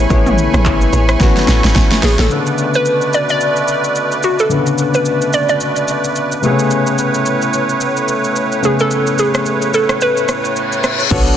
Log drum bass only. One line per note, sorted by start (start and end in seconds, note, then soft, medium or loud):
0.10 0.48 A1 loud
0.54 0.87 A1 loud
0.93 1.16 A1 loud
1.20 1.34 A1 loud
1.48 1.62 A1 loud
1.64 1.74 G#1 medium
1.75 1.89 G#1 loud
2.03 2.17 A1 medium
2.19 2.29 A1 medium
11.11 11.37 B1 loud